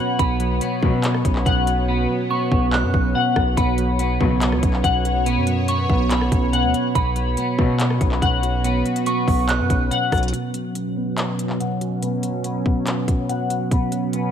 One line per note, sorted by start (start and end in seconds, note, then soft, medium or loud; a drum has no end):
0.00 0.19 B2 loud
0.00 0.21 F#3 medium
0.00 0.16 B3 medium
0.00 0.18 B3 medium
0.00 0.19 B3 loud
0.00 0.19 C#4 medium
0.00 0.21 F#4 medium
0.00 6.91 F#4 medium
0.00 3.53 C#5 medium
0.00 0.19 F#5 loud
0.00 0.15 B5 medium
0.19 0.60 B1 loud
0.19 0.61 B2 loud
0.19 10.29 B3 medium
0.19 0.61 B3 medium
0.19 1.84 B5 loud
0.19 kick loud
0.19 closed hi-hat loud
0.40 1.46 F#3 medium
0.40 closed hi-hat medium
0.61 1.03 B2 medium
0.61 1.87 B3 medium
0.61 closed hi-hat medium
0.83 1.23 B2 loud
0.83 1.13 B2 loud
0.83 1.13 C#3 medium
0.83 1.13 F#3 loud
0.83 1.88 B3 medium
0.83 kick loud
1.04 1.45 B2 medium
1.04 clap loud
1.04 closed hi-hat medium
1.14 cross-stick medium
1.25 1.45 B1 loud
1.25 2.30 C#4 medium
1.25 kick loud
1.25 closed hi-hat medium
1.35 clap medium
1.46 2.07 B1 loud
1.46 1.87 B2 loud
1.46 3.14 F#5 loud
1.46 kick medium
1.46 closed hi-hat medium
1.67 2.73 F#4 medium
1.67 closed hi-hat medium
1.88 2.29 B2 medium
1.88 2.29 B3 medium
2.09 3.15 F#3 medium
2.30 2.72 B2 medium
2.30 3.56 B3 medium
2.30 2.70 C#6 medium
2.52 2.85 B1 loud
2.52 3.57 B3 loud
2.52 kick loud
2.73 3.14 B2 medium
2.73 3.13 F#6 medium
2.73 clap loud
2.83 2.93 F#2 loud
2.93 3.14 B1 loud
2.93 3.57 C#4 medium
2.93 kick loud
3.15 3.56 B2 medium
3.15 3.57 F#5 loud
3.36 3.56 B1 loud
3.36 3.57 F#4 medium
3.36 kick loud
3.36 cross-stick loud
3.57 4.18 B1 loud
3.57 3.99 B2 medium
3.57 3.99 B3 medium
3.57 10.29 C#5 medium
3.57 5.22 B5 medium
3.57 kick loud
3.57 closed hi-hat loud
3.78 4.84 F#3 medium
3.78 closed hi-hat medium
3.99 4.40 B2 medium
3.99 5.25 B3 medium
3.99 closed hi-hat medium
4.21 4.54 B1 loud
4.21 4.51 B2 loud
4.21 4.51 C#3 loud
4.21 4.51 F#3 loud
4.21 5.27 B3 loud
4.21 kick loud
4.41 4.83 B2 medium
4.41 clap loud
4.41 closed hi-hat medium
4.52 4.62 C#2 loud
4.52 cross-stick medium
4.63 4.83 B1 loud
4.63 5.69 C#4 medium
4.63 kick loud
4.63 closed hi-hat medium
4.73 clap medium
4.84 5.38 B1 loud
4.84 5.25 B2 medium
4.84 6.52 F#5 loud
4.84 kick medium
4.84 closed hi-hat medium
5.05 6.11 F#4 medium
5.05 closed hi-hat medium
5.26 5.67 B2 loud
5.26 5.67 B3 medium
5.26 closed hi-hat loud
5.37 5.87 F#2 loud
5.47 6.53 F#3 medium
5.47 closed hi-hat medium
5.68 6.09 B2 medium
5.68 6.94 B3 medium
5.68 6.08 C#6 medium
5.68 closed hi-hat medium
5.90 6.30 B1 loud
5.90 6.95 B3 loud
5.90 kick loud
6.11 6.51 B2 medium
6.11 6.91 B5 medium
6.11 clap loud
6.11 closed hi-hat medium
6.21 cross-stick medium
6.32 6.65 B1 loud
6.32 6.95 C#4 medium
6.32 kick loud
6.32 closed hi-hat medium
6.53 6.94 B2 medium
6.53 6.95 F#5 loud
6.53 closed hi-hat medium
6.64 6.74 D2 loud
6.74 6.95 F#4 medium
6.74 closed hi-hat medium
6.95 7.36 B1 loud
6.95 7.37 B2 loud
6.95 7.36 B3 medium
6.95 10.30 F#4 medium
6.95 8.60 B5 loud
6.95 kick loud
6.95 closed hi-hat loud
7.16 8.22 F#3 medium
7.16 closed hi-hat medium
7.37 7.79 B2 medium
7.37 8.63 B3 medium
7.37 closed hi-hat medium
7.59 7.99 B2 loud
7.59 7.89 B2 loud
7.59 7.89 C#3 loud
7.59 7.89 F#3 loud
7.59 8.64 B3 medium
7.59 kick loud
7.80 8.21 B2 medium
7.80 clap loud
7.80 closed hi-hat medium
7.90 cross-stick medium
8.01 8.21 B1 loud
8.01 9.06 C#4 medium
8.01 kick loud
8.01 closed hi-hat medium
8.12 clap medium
8.22 8.83 B1 loud
8.22 8.63 B2 loud
8.22 9.90 F#5 loud
8.22 kick medium
8.22 closed hi-hat medium
8.43 9.49 F#4 medium
8.43 closed hi-hat medium
8.64 9.05 B2 medium
8.64 9.05 B3 medium
8.64 closed hi-hat loud
8.85 9.91 F#3 medium
8.85 closed hi-hat soft
8.96 closed hi-hat medium
9.06 9.48 B2 medium
9.06 10.32 B3 medium
9.06 9.46 C#6 medium
9.06 closed hi-hat medium
9.28 9.61 B1 loud
9.28 10.33 B3 loud
9.28 kick loud
9.28 open hi-hat medium
9.49 9.89 B2 medium
9.49 9.89 F#6 medium
9.49 clap loud
9.49 closed hi-hat medium
9.59 9.69 F#2 loud
9.69 9.90 B1 loud
9.69 10.33 C#4 medium
9.69 kick loud
9.69 closed hi-hat medium
9.91 10.32 B2 medium
9.91 10.33 F#5 loud
9.91 closed hi-hat medium
10.12 10.32 B1 loud
10.12 10.33 F#4 medium
10.12 kick medium
10.12 cross-stick loud
10.12 closed hi-hat soft
10.12 open hi-hat medium
10.18 closed hi-hat medium
10.23 closed hi-hat medium
10.28 closed hi-hat medium
10.33 10.75 B2 medium
10.33 14.31 B2 medium
10.33 14.31 F#3 medium
10.33 10.75 B3 medium
10.33 13.68 C#4 medium
10.33 closed hi-hat medium
10.54 11.60 F#3 medium
10.54 closed hi-hat medium
10.75 11.16 B2 medium
10.75 12.01 B3 medium
10.75 closed hi-hat medium
10.97 12.03 B3 medium
11.17 11.59 B2 medium
11.17 clap loud
11.17 closed hi-hat medium
11.39 12.45 C#4 medium
11.39 closed hi-hat medium
11.50 clap medium
11.60 12.01 B2 medium
11.60 13.28 F#5 medium
11.60 closed hi-hat medium
11.81 12.87 F#4 medium
11.81 closed hi-hat medium
12.02 12.43 B2 medium
12.02 12.43 B3 medium
12.02 closed hi-hat loud
12.23 13.29 F#3 medium
12.23 closed hi-hat medium
12.44 12.86 B2 medium
12.44 13.70 B3 medium
12.44 closed hi-hat medium
12.66 13.71 B3 loud
12.66 kick loud
12.87 13.28 B2 medium
12.87 clap loud
12.87 closed hi-hat medium
13.08 13.71 C#4 medium
13.08 kick loud
13.08 closed hi-hat medium
13.29 13.71 B2 medium
13.29 13.71 F#5 medium
13.29 closed hi-hat medium
13.50 13.71 F#4 medium
13.50 closed hi-hat medium
13.71 14.13 B2 medium
13.71 14.13 B3 medium
13.71 14.31 C#4 medium
13.71 kick loud
13.71 closed hi-hat loud
13.92 14.31 F#3 medium
13.92 closed hi-hat medium
14.13 14.31 B2 medium
14.13 14.31 B3 medium
14.13 closed hi-hat medium